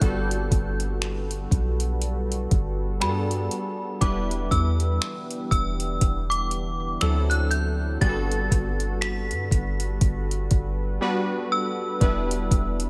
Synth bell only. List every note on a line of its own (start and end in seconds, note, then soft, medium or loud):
0.00 0.77 G6 medium
3.01 3.97 B5 medium
4.01 4.53 D6 medium
4.51 5.50 E6 medium
5.51 6.33 E6 medium
6.30 7.03 D6 medium
7.01 7.28 E6 loud
7.30 7.49 F#6 loud
7.51 7.65 G6 loud
8.01 9.04 A6 loud
9.01 9.97 B6 medium
11.52 12.90 E6 medium